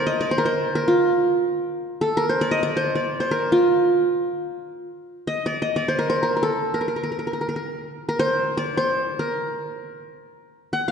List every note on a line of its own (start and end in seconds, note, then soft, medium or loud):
0.00 0.38 A#4 medium
0.00 0.31 C5 medium
0.00 0.13 D5 medium
0.07 0.27 D#5 medium
0.21 1.21 D5 medium
0.31 0.45 C5 medium
0.38 0.75 A#4 medium
0.46 1.51 C5 medium
0.75 1.89 A#4 medium
0.88 2.22 F4 medium
2.01 2.23 A4 medium
2.17 3.30 A#4 medium
2.29 2.76 C5 medium
2.41 2.57 D5 medium
2.51 2.69 D#5 medium
2.63 2.95 D5 medium
2.77 3.20 C5 medium
2.95 3.95 D5 medium
3.20 4.26 C5 medium
3.31 4.45 A#4 medium
3.52 4.87 F4 medium
5.27 5.52 D#5 medium
5.46 5.68 D5 medium
5.62 5.82 D#5 medium
5.76 6.76 D5 medium
5.88 6.09 C5 medium
5.99 6.22 A#4 medium
6.10 7.15 C5 medium
6.23 6.36 A#4 medium
6.37 6.49 A#4 medium
6.43 6.80 A4 medium
6.74 6.80 A#4 medium
6.81 6.88 A#4 soft
6.88 6.96 A#4 soft
6.96 7.03 A#4 soft
7.03 7.11 A#4 soft
7.12 7.18 A#4 soft
7.19 7.27 A#4 soft
7.27 7.33 A#4 soft
7.33 7.41 A#4 soft
7.41 7.48 A#4 soft
7.49 7.56 A#4 soft
7.56 8.08 A#4 soft
8.09 9.19 A#4 medium
8.19 8.77 C5 medium
8.57 9.57 D5 medium
8.77 9.83 C5 medium
9.19 10.33 A#4 medium
10.73 10.92 F#5 medium
10.88 10.92 F5 medium